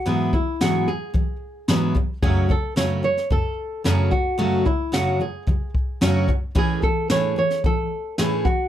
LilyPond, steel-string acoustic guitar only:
\new Staff \with { instrumentName = "Steel-string acoustic guitar" } { \clef bass \time 4/4 \key a \major \tempo 4 = 111 <gis, e fis b e' gis'>8 <gis, e fis>8 <gis, e fis b e' gis'>8 <gis, e fis>8 <gis, e fis>8 r8 <gis, e fis b e' gis'>8 <gis, e fis>8 | <fis, cis fis a cis' fis'>8 <fis, cis fis>8 <fis, cis fis a cis' fis'>8 <fis, cis fis>8 <fis, cis fis>8 r8 <fis, cis fis a cis' fis'>8 <fis, cis fis>8 | <fis, cis fis a cis' fis'>8 <fis, cis fis>8 <fis, cis fis a cis' fis'>8 <fis, cis fis>8 <fis, cis fis>8 r8 <fis, cis fis a cis' fis'>8 <fis, cis fis>8 | <a, e a cis' gis'>8 <a, e>8 <a, e a cis' gis'>8 <a, e>8 <a, e>8 r8 <a, e a cis' gis'>8 <gis, e fis>8 | }